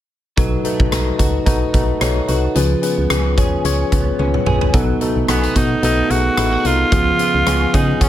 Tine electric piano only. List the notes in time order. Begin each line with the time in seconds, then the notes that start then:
0.37 B2 D#4 F#4 A4 B4
0.64 D#4 F#4 A4 B4
0.91 D#4 F#4 A4 B4
1.18 D#4 F#4 A4 B4
1.46 D#4 F#4 A4 B4
1.73 D#4 F#4 A4 B4
2.00 D#4 F#4 A4 C#5
2.28 D#4 F#4 A4 B4
2.55 C#3 C#4 F4 G#4 B4
2.82 C#4 F4 G#4 B4
3.10 C#4 F4 G#4 B4
3.37 C#4 F4 G#4 C#5
3.64 C#4 F4 G#4 C#5
3.91 C#4 F4 G#4 B4
4.19 C#4 F4 G#4 B4
4.46 C#4 F4 G#4 B4
4.73 B2 B3 D#4 F#4 A4
5.01 B3 D#4 F#4 A4
5.28 B3 D#4 F#4 A4
5.55 B3 D#4 F#4 A4
5.83 B3 D#4 F#4 A4
6.10 B3 D#4 F#4 G#4
6.37 B3 D#4 F#4 A4
6.64 B3 D#4 F#4 A4
6.91 C#3 B3 C#4 F4 G#4
7.19 B3 C#4 G#4
7.46 B3 C#4 F4 G#4
7.74 B3 C#4 F4 G#4
8.01 B3 C#4 F4 G#4